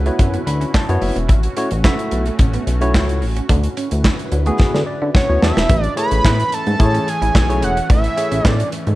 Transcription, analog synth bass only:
Already playing: C#2
0.19 F#2
0.47 D2
0.89 F#2
1.02 F#1
1.16 E1
1.29 A1
1.71 A1
2.12 B1
2.39 A1
2.67 B1
2.94 C#2
3.22 A1
3.49 D2
3.92 D2
4.32 D2
4.74 D3
5.02 D3
5.30 D2
5.43 E2
5.57 E1
5.70 A1
6.12 A1
6.25 A2
6.67 G#2
6.80 A2
7.22 A1
7.35 B1
7.62 E1
7.90 A1
8.32 A1
8.45 A2
8.87 G#2

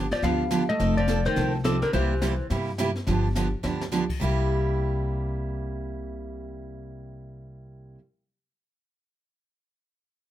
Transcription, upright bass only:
Already playing: G1
0.22 D2
0.80 F1
1.37 C2
1.94 C2
2.50 G2
3.07 G1
3.64 D2
4.21 C2

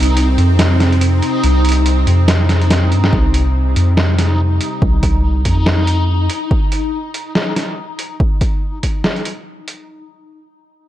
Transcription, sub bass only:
Already playing: C2
0.38 F2
1.44 C2
2.07 F2
2.92 G2
3.13 C2
3.76 F2
4.82 C2
5.45 F2

